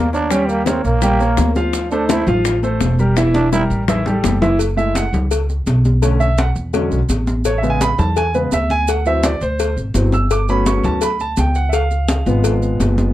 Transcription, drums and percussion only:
0.13 high bongo soft
0.13 maracas soft
0.31 high bongo medium
0.31 high conga soft
0.31 maracas medium
0.49 high bongo soft
0.49 high conga soft
0.49 maracas soft
0.66 high bongo medium
0.66 high conga loud
0.66 maracas medium
0.85 maracas soft
1.02 high bongo medium
1.02 high conga soft
1.02 maracas medium
1.20 high bongo soft
1.20 high conga soft
1.20 maracas soft
1.37 high bongo medium
1.37 low bongo medium
1.37 high conga medium
1.37 maracas medium
1.55 high bongo soft
1.55 high conga medium
1.55 maracas soft
1.73 high bongo medium
1.73 high conga soft
1.73 maracas medium
1.91 high conga soft
1.91 maracas soft
2.09 high bongo medium
2.09 high conga loud
2.09 maracas medium
2.27 high bongo soft
2.27 high conga soft
2.27 low conga medium
2.27 maracas soft
2.45 high bongo medium
2.45 high conga soft
2.45 maracas medium
2.63 high bongo soft
2.63 high conga soft
2.63 maracas soft
2.81 high bongo medium
2.81 low bongo medium
2.81 high conga medium
2.81 maracas medium
2.99 high bongo soft
2.99 maracas soft
3.17 high bongo medium
3.17 high conga medium
3.17 maracas medium
3.34 high bongo soft
3.34 high conga medium
3.34 maracas soft
3.53 high bongo medium
3.53 maracas medium
3.71 maracas soft
3.88 high bongo medium
3.88 low conga loud
3.88 maracas medium
4.06 high bongo soft
4.06 low conga medium
4.06 maracas soft
4.24 high bongo medium
4.24 low bongo medium
4.24 low conga medium
4.24 maracas medium
4.42 high bongo soft
4.42 low conga loud
4.42 maracas soft
4.59 cowbell medium
4.59 high conga soft
4.59 maracas medium
4.78 high conga soft
4.78 maracas soft
4.95 cowbell medium
4.95 high conga loud
4.95 maracas medium
5.14 high conga soft
5.14 low conga medium
5.14 maracas soft
5.31 cowbell loud
5.31 high conga soft
5.31 maracas medium
5.50 high conga soft
5.50 maracas soft
5.67 cowbell medium
5.67 high conga medium
5.67 maracas medium
5.85 high conga medium
5.85 maracas soft
6.02 cowbell loud
6.02 high conga soft
6.02 maracas medium
6.21 high conga soft
6.21 maracas soft
6.38 cowbell medium
6.38 high conga loud
6.38 maracas medium
6.56 maracas soft
6.74 cowbell loud
6.74 high conga soft
6.74 maracas medium
6.92 high conga soft
6.92 maracas soft
7.09 cowbell medium
7.09 high conga medium
7.09 maracas medium
7.27 high conga medium
7.27 maracas soft
7.45 cowbell loud
7.45 high conga soft
7.45 maracas medium
7.63 high conga soft
7.63 maracas soft
7.81 cowbell medium
7.81 high conga loud
7.81 maracas medium
7.99 high conga soft
7.99 low conga medium
7.99 maracas soft
8.17 cowbell loud
8.17 high conga soft
8.17 maracas medium
8.34 high conga soft
8.34 maracas soft
8.52 cowbell medium
8.52 high conga medium
8.52 maracas medium
8.70 high conga medium
8.70 maracas soft
8.88 cowbell loud
8.88 high conga soft
8.88 maracas medium
9.05 high conga soft
9.05 maracas soft
9.23 cowbell medium
9.23 high conga loud
9.23 maracas medium
9.41 maracas soft
9.59 cowbell loud
9.59 high conga soft
9.59 maracas medium
9.77 high conga soft
9.77 maracas soft
9.94 cowbell medium
9.94 high conga medium
9.94 maracas medium
10.12 high conga medium
10.12 maracas soft
10.31 cowbell loud
10.31 high conga soft
10.31 maracas medium
10.49 high conga soft
10.49 maracas soft
10.66 cowbell medium
10.66 high conga loud
10.66 maracas medium
10.84 high conga soft
10.84 low conga medium
10.84 maracas soft
11.01 cowbell loud
11.01 high conga soft
11.01 maracas medium
11.20 high conga soft
11.20 maracas soft
11.37 cowbell medium
11.37 high conga medium
11.37 maracas medium
11.55 maracas soft
11.73 cowbell loud
11.73 high conga soft
11.73 maracas medium
11.91 high conga soft
11.91 maracas soft
12.08 cowbell medium
12.08 high conga loud
12.08 maracas medium
12.26 maracas soft
12.44 cowbell loud
12.44 high conga soft
12.44 maracas medium
12.62 high conga soft
12.62 maracas soft
12.80 cowbell medium
12.80 high conga medium
12.80 maracas medium
12.98 high conga medium
12.98 maracas soft

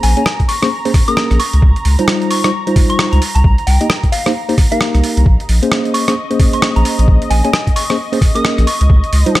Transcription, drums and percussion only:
0.03 open hi-hat loud
0.17 closed hi-hat medium
0.26 cross-stick loud
0.40 kick medium
0.40 closed hi-hat soft
0.49 open hi-hat loud
0.63 cross-stick medium
0.63 open hi-hat medium
0.85 open hi-hat medium
0.94 kick loud
0.94 cross-stick soft
0.94 open hi-hat loud
1.08 closed hi-hat medium
1.17 cross-stick loud
1.31 cross-stick soft
1.31 closed hi-hat medium
1.40 open hi-hat loud
1.53 closed hi-hat medium
1.62 kick loud
1.76 closed hi-hat soft
1.85 open hi-hat loud
1.99 closed hi-hat medium
2.08 cross-stick loud
2.22 closed hi-hat soft
2.31 open hi-hat loud
2.44 cross-stick medium
2.44 closed hi-hat medium
2.67 closed hi-hat soft
2.76 kick loud
2.76 open hi-hat loud
2.90 closed hi-hat medium
2.99 cross-stick loud
3.13 closed hi-hat soft
3.22 open hi-hat loud
3.36 closed hi-hat medium
3.44 kick loud
3.58 closed hi-hat soft
3.67 open hi-hat loud
3.81 closed hi-hat medium
3.90 cross-stick loud
4.03 kick medium
4.03 closed hi-hat soft
4.12 open hi-hat loud
4.26 cross-stick medium
4.26 open hi-hat medium
4.49 open hi-hat medium
4.58 kick loud
4.58 cross-stick soft
4.58 open hi-hat loud
4.72 closed hi-hat medium
4.81 cross-stick loud
4.95 cross-stick soft
4.95 closed hi-hat medium
5.04 open hi-hat medium
5.17 closed hi-hat medium
5.26 kick loud
5.40 closed hi-hat soft
5.49 open hi-hat loud
5.63 closed hi-hat medium
5.72 cross-stick loud
5.85 closed hi-hat soft
5.94 open hi-hat loud
6.08 cross-stick medium
6.08 closed hi-hat medium
6.31 closed hi-hat medium
6.40 kick loud
6.40 open hi-hat loud
6.53 closed hi-hat medium
6.62 cross-stick loud
6.76 closed hi-hat medium
6.85 open hi-hat loud
6.99 closed hi-hat medium
7.08 kick loud
7.22 closed hi-hat soft
7.31 open hi-hat loud
7.45 closed hi-hat medium
7.53 cross-stick loud
7.67 kick medium
7.67 closed hi-hat soft
7.76 open hi-hat loud
7.90 cross-stick medium
7.90 open hi-hat medium
8.13 open hi-hat medium
8.21 kick loud
8.21 cross-stick soft
8.21 open hi-hat loud
8.36 closed hi-hat medium
8.45 cross-stick loud
8.58 cross-stick soft
8.58 closed hi-hat medium
8.67 open hi-hat loud
8.81 closed hi-hat medium
8.90 kick loud
9.04 closed hi-hat soft
9.13 open hi-hat loud
9.26 closed hi-hat medium
9.35 cross-stick loud

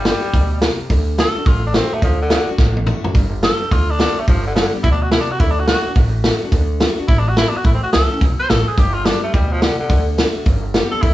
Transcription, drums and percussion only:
0.05 snare loud
0.05 open hi-hat medium
0.34 kick loud
0.34 open hi-hat medium
0.62 snare loud
0.62 open hi-hat medium
0.90 kick loud
0.90 open hi-hat medium
1.19 snare loud
1.19 open hi-hat medium
1.46 kick loud
1.46 open hi-hat medium
1.74 snare loud
1.74 open hi-hat medium
2.02 kick loud
2.02 open hi-hat medium
2.30 snare loud
2.30 open hi-hat medium
2.58 kick loud
2.58 snare medium
2.77 high tom medium
2.87 mid tom medium
3.04 floor tom medium
3.15 kick loud
3.15 open hi-hat medium
3.43 snare loud
3.43 open hi-hat medium
3.71 kick loud
3.71 open hi-hat medium
4.00 snare loud
4.00 open hi-hat medium
4.28 kick loud
4.28 open hi-hat medium
4.56 snare loud
4.56 open hi-hat medium
4.84 kick loud
4.84 open hi-hat soft
5.12 snare loud
5.12 open hi-hat medium
5.40 kick loud
5.40 open hi-hat medium
5.67 snare loud
5.67 open hi-hat medium
5.95 kick loud
5.95 open hi-hat medium
6.24 snare loud
6.24 open hi-hat medium
6.52 kick loud
6.52 open hi-hat medium
6.81 snare loud
6.81 open hi-hat medium
7.08 kick loud
7.08 open hi-hat soft
7.37 snare loud
7.37 open hi-hat medium
7.65 kick loud
7.65 open hi-hat medium
7.93 snare loud
7.93 open hi-hat medium
8.21 kick loud
8.21 open hi-hat medium
8.50 snare loud
8.50 open hi-hat medium
8.78 kick loud
8.78 open hi-hat medium
9.05 snare loud
9.05 open hi-hat medium
9.34 kick loud
9.34 open hi-hat soft
9.62 snare loud
9.62 open hi-hat medium
9.90 kick loud
9.90 open hi-hat medium
10.18 snare loud
10.18 open hi-hat medium
10.46 kick loud
10.46 open hi-hat medium
10.74 snare loud
10.74 open hi-hat medium
11.03 kick loud
11.03 open hi-hat medium

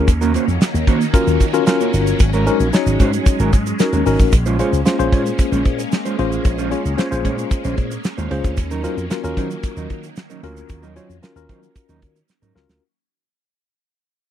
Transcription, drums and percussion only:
0.08 kick loud
0.08 closed hi-hat loud
0.08 shaker medium
0.22 shaker soft
0.34 closed hi-hat medium
0.34 shaker soft
0.49 shaker soft
0.61 snare loud
0.61 closed hi-hat medium
0.61 shaker medium
0.75 shaker medium
0.87 kick loud
0.87 closed hi-hat medium
1.01 closed hi-hat soft
1.01 shaker medium
1.14 kick loud
1.14 closed hi-hat loud
1.14 shaker medium
1.27 shaker medium
1.40 kick loud
1.40 closed hi-hat medium
1.40 shaker medium
1.54 shaker medium
1.67 snare loud
1.67 closed hi-hat loud
1.67 shaker medium
1.81 shaker medium
1.94 closed hi-hat medium
1.94 shaker medium
2.07 shaker medium
2.19 kick loud
2.19 closed hi-hat loud
2.19 shaker medium
2.33 shaker soft
2.47 closed hi-hat medium
2.47 shaker medium
2.60 shaker soft
2.73 snare loud
2.73 closed hi-hat medium
2.73 shaker medium
2.87 shaker medium
3.00 kick loud
3.00 closed hi-hat medium
3.00 shaker medium
3.13 closed hi-hat soft
3.13 shaker medium
3.26 kick loud
3.26 closed hi-hat medium
3.26 shaker medium
3.40 shaker medium
3.53 kick loud
3.53 closed hi-hat medium
3.53 shaker medium
3.66 shaker medium
3.79 snare loud
3.79 closed hi-hat medium
3.79 shaker medium
3.93 closed hi-hat medium
3.93 shaker soft
4.06 open hi-hat medium
4.06 shaker medium
4.20 kick loud
4.20 shaker medium
4.32 kick loud
4.32 closed hi-hat loud
4.32 shaker medium
4.46 shaker soft
4.59 closed hi-hat medium
4.59 shaker soft
4.73 shaker medium
4.86 snare loud
4.86 closed hi-hat medium
4.86 shaker medium
5.00 shaker medium
5.12 kick loud
5.12 closed hi-hat medium
5.26 shaker soft
5.39 kick loud
5.39 closed hi-hat medium
5.39 shaker medium
5.53 shaker medium
5.65 kick loud
5.65 closed hi-hat medium
5.79 shaker medium
5.92 snare loud
5.92 closed hi-hat medium
5.92 shaker medium
6.05 closed hi-hat medium
6.05 shaker medium
6.19 closed hi-hat medium
6.32 shaker medium
6.45 kick loud
6.45 closed hi-hat loud
6.45 shaker medium
6.59 shaker soft
6.71 closed hi-hat medium
6.71 shaker soft
6.86 shaker medium
6.98 snare loud
6.98 closed hi-hat medium
6.98 shaker medium
7.12 shaker medium
7.25 kick medium
7.25 closed hi-hat medium
7.38 closed hi-hat soft
7.38 shaker medium
7.51 kick loud
7.51 closed hi-hat loud
7.51 shaker medium
7.64 shaker medium
7.77 kick loud
7.77 closed hi-hat medium
7.91 shaker medium
8.04 snare loud
8.04 closed hi-hat medium
8.04 shaker medium
8.18 shaker soft
8.31 closed hi-hat medium
8.44 kick loud
8.44 shaker medium
8.57 kick loud
8.57 closed hi-hat loud
8.57 shaker medium
8.71 shaker soft
8.84 closed hi-hat medium
8.84 shaker medium
8.98 shaker soft
9.11 snare loud
9.11 closed hi-hat medium
9.11 shaker medium
9.24 shaker medium
9.37 kick medium
9.37 closed hi-hat medium
9.50 closed hi-hat soft
9.50 shaker medium
9.63 kick loud
9.63 closed hi-hat loud
9.63 shaker medium
9.77 shaker soft
9.90 kick medium
9.90 closed hi-hat medium
10.03 shaker medium
10.16 snare loud
10.16 closed hi-hat medium
10.16 shaker medium
10.30 shaker medium
10.44 closed hi-hat medium
10.57 shaker medium
10.69 kick loud
10.69 closed hi-hat medium
10.69 shaker medium
10.83 shaker soft
10.96 closed hi-hat medium
10.96 shaker soft
11.10 shaker soft
11.23 snare loud
11.23 closed hi-hat medium
11.23 shaker medium
11.37 shaker medium
11.49 kick loud
11.49 closed hi-hat medium
11.63 closed hi-hat soft
11.63 shaker soft
11.76 kick loud
11.76 closed hi-hat medium
11.76 shaker medium
11.89 shaker medium
12.02 kick medium
12.02 closed hi-hat medium
12.16 shaker medium
12.29 snare medium
12.29 shaker medium
12.43 shaker soft
12.56 snare medium
12.69 snare loud
12.69 shaker medium

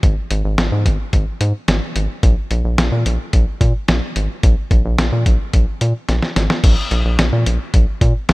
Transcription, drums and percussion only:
0.03 kick loud
0.03 closed hi-hat medium
0.31 closed hi-hat medium
0.58 snare loud
0.58 closed hi-hat medium
0.86 kick medium
0.86 closed hi-hat medium
1.13 kick medium
1.13 closed hi-hat medium
1.41 closed hi-hat medium
1.68 snare loud
1.68 closed hi-hat medium
1.96 closed hi-hat medium
2.23 kick loud
2.23 closed hi-hat medium
2.51 closed hi-hat medium
2.78 snare loud
2.78 closed hi-hat medium
3.06 closed hi-hat medium
3.33 kick medium
3.33 closed hi-hat medium
3.61 kick medium
3.61 closed hi-hat medium
3.88 snare loud
3.88 closed hi-hat medium
4.16 closed hi-hat medium
4.43 kick loud
4.43 closed hi-hat medium
4.71 kick medium
4.71 closed hi-hat medium
4.98 snare loud
4.98 closed hi-hat medium
5.26 kick medium
5.26 closed hi-hat medium
5.53 kick medium
5.53 closed hi-hat medium
5.81 closed hi-hat medium
6.09 snare medium
6.09 closed hi-hat medium
6.22 snare medium
6.36 snare medium
6.36 closed hi-hat medium
6.50 snare medium
6.64 kick loud
6.64 closed hi-hat medium
6.64 crash medium
6.91 closed hi-hat medium
7.19 snare loud
7.19 closed hi-hat medium
7.46 closed hi-hat medium
7.74 kick medium
7.74 closed hi-hat medium
8.01 kick medium
8.01 closed hi-hat medium
8.29 snare loud
8.29 closed hi-hat medium

